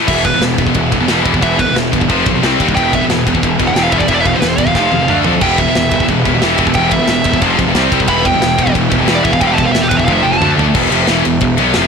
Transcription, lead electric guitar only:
0.08 0.25 E5 medium
0.25 0.42 B4 medium
1.43 1.59 E5 loud
1.59 1.75 B4 medium
2.75 2.92 G5 loud
2.95 3.04 E5 loud
3.67 3.75 F#5 medium
3.75 3.83 G5 loud
3.83 3.92 F5 medium
3.93 3.99 E5 medium
3.99 4.08 D5 medium
4.08 4.14 E5 medium
4.14 4.20 D5 medium
4.20 4.26 E5 medium
4.26 4.34 F5 loud
4.33 4.41 C5 medium
4.41 4.49 B4 medium
4.49 4.58 C5 medium
4.58 4.67 D5 loud
4.67 5.17 F5 medium
5.42 5.58 G5 medium
5.58 6.05 E5 medium
6.75 6.91 G5 loud
6.92 7.39 E5 medium
8.09 8.25 B5 loud
8.26 8.72 G5 loud
9.15 9.24 D5 medium
9.24 9.33 E5 medium
9.32 9.40 F5 medium
9.40 9.47 G5 loud
9.47 9.52 F5 medium
9.52 9.58 G5 medium
9.52 9.64 A5 loud
9.63 9.72 F5 medium
9.72 9.82 E5 loud
9.81 9.89 G4 medium
9.89 9.99 B4 loud
9.96 10.04 E5 loud
10.05 10.13 F5 loud
10.13 10.23 E5 medium
10.23 10.32 G5 loud
10.32 10.38 G#5 medium
10.38 10.49 A5 loud

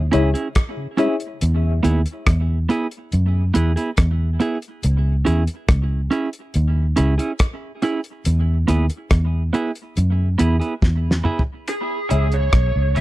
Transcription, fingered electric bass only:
0.14 0.33 C#2 medium
1.42 1.80 E2 loud
1.85 2.04 D#2 medium
2.27 2.66 E2 medium
3.13 3.52 F#2 loud
3.56 3.75 E2 loud
3.99 4.37 E2 medium
4.84 5.23 C#2 loud
5.27 5.46 E2 medium
5.69 6.08 C#2 medium
6.56 6.94 D#2 loud
6.98 7.17 C#2 loud
8.26 8.65 E2 loud
8.69 8.88 D#2 medium
9.12 9.50 E2 medium
9.97 10.36 F#2 medium
10.41 10.59 E2 loud
10.83 11.21 E2 medium
12.11 12.50 C#2 loud
12.54 12.73 B1 medium
12.76 12.94 C#2 medium
12.97 13.01 D#2 loud

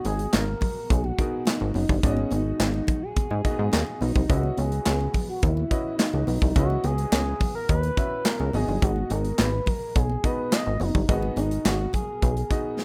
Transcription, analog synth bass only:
0.05 0.27 G#1 loud
0.34 0.55 G#1 loud
0.90 1.12 B1 loud
1.61 1.72 G#1 loud
1.75 1.86 F#1 loud
1.89 2.00 G1 loud
2.03 2.25 G#1 loud
2.32 2.53 G#1 medium
2.60 2.82 G#1 loud
3.31 3.42 G#2 loud
3.59 3.70 G#2 loud
3.73 3.84 D#2 loud
4.02 4.12 B1 loud
4.16 4.26 C2 medium
4.30 4.51 C#2 loud
4.58 4.80 C#2 loud
4.86 5.08 C#2 loud
5.43 5.65 D#2 loud
6.14 6.24 C#2 medium
6.27 6.38 B1 medium
6.42 6.53 C2 loud
6.56 6.78 C#2 loud
6.84 7.06 C#2 loud
7.12 7.34 C#2 loud
7.69 7.91 D#2 loud
8.40 8.51 C#2 loud
8.54 8.65 G#1 loud
8.68 8.79 G1 loud
8.82 9.04 G#1 loud
9.11 9.33 G#1 loud
9.39 9.61 G#1 loud
9.96 10.18 B1 loud
10.67 10.77 G#1 loud
10.80 10.91 F#1 loud
10.95 11.06 G1 loud
11.09 11.31 G#1 loud
11.37 11.59 G#1 loud
11.66 11.87 G#1 loud
12.22 12.44 B1 loud

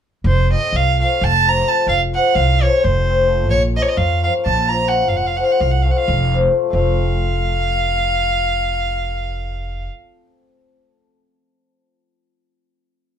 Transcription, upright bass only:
0.24 0.54 F1 medium
0.73 1.02 C2 medium
1.21 1.60 F1 medium
1.86 2.16 F1 medium
2.35 2.64 C2 medium
2.84 3.49 F1 medium
3.49 3.78 A#1 medium
3.97 4.26 F2 medium
4.46 5.11 A#1 medium
5.11 5.40 F1 medium
5.60 5.89 C2 medium
6.08 6.46 F1 medium
6.73 9.87 F1 medium

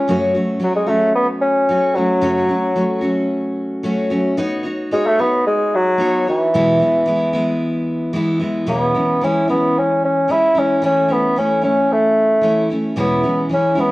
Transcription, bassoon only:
0.00 0.19 C#4 medium
0.64 0.75 F#3 medium
0.76 0.90 G#3 medium
0.88 1.15 A3 medium
1.15 1.27 B3 loud
1.41 1.97 C#4 medium
1.95 3.30 F#3 medium
4.92 5.08 G#3 loud
5.06 5.21 A3 loud
5.20 5.46 B3 medium
5.47 5.77 G#3 loud
5.75 6.27 F#3 loud
6.29 7.58 E3 medium
8.69 9.25 B3 medium
9.24 9.49 C#4 medium
9.50 9.80 B3 medium
9.78 10.03 C#4 loud
10.05 10.33 C#4 medium
10.31 10.60 E4 loud
10.59 10.84 C#4 medium
10.85 11.13 C#4 medium
11.11 11.39 B3 medium
11.38 11.63 C#4 medium
11.64 11.94 C#4 medium
11.92 12.71 A3 medium
12.99 13.48 B3 medium
13.53 13.81 C#4 medium
13.80 13.92 B3 medium

